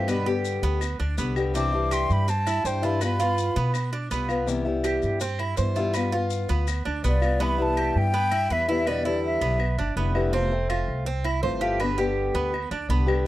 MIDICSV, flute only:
0, 0, Header, 1, 2, 480
1, 0, Start_track
1, 0, Key_signature, 0, "major"
1, 0, Tempo, 366077
1, 106, Time_signature, 4, 2, 24, 8
1, 17402, End_track
2, 0, Start_track
2, 0, Title_t, "Flute"
2, 0, Program_c, 0, 73
2, 2039, Note_on_c, 0, 86, 92
2, 2522, Note_on_c, 0, 84, 98
2, 2542, Note_off_c, 0, 86, 0
2, 2786, Note_on_c, 0, 83, 94
2, 2806, Note_off_c, 0, 84, 0
2, 3008, Note_on_c, 0, 81, 83
2, 3028, Note_off_c, 0, 83, 0
2, 3497, Note_on_c, 0, 79, 83
2, 3517, Note_off_c, 0, 81, 0
2, 3735, Note_on_c, 0, 83, 86
2, 3755, Note_off_c, 0, 79, 0
2, 5164, Note_off_c, 0, 83, 0
2, 9276, Note_on_c, 0, 74, 85
2, 9735, Note_on_c, 0, 83, 88
2, 9755, Note_off_c, 0, 74, 0
2, 9991, Note_on_c, 0, 81, 90
2, 10011, Note_off_c, 0, 83, 0
2, 10458, Note_on_c, 0, 79, 105
2, 10478, Note_off_c, 0, 81, 0
2, 11174, Note_on_c, 0, 76, 83
2, 11194, Note_off_c, 0, 79, 0
2, 11642, Note_on_c, 0, 74, 83
2, 11662, Note_off_c, 0, 76, 0
2, 12114, Note_off_c, 0, 74, 0
2, 12128, Note_on_c, 0, 76, 77
2, 13025, Note_off_c, 0, 76, 0
2, 17402, End_track
0, 0, End_of_file